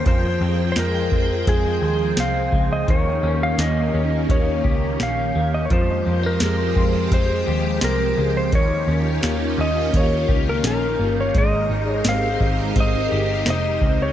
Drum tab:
HH |x-x-x-x-|x-x-x-x-|x-x-x-x-|x-x-x-x-|
SD |--o---o-|--o---o-|--o---o-|--o---o-|
BD |o--oo--o|o---oo--|o--oo---|o---oo--|

HH |x-x-x-x-|
SD |--o---o-|
BD |o--oo--o|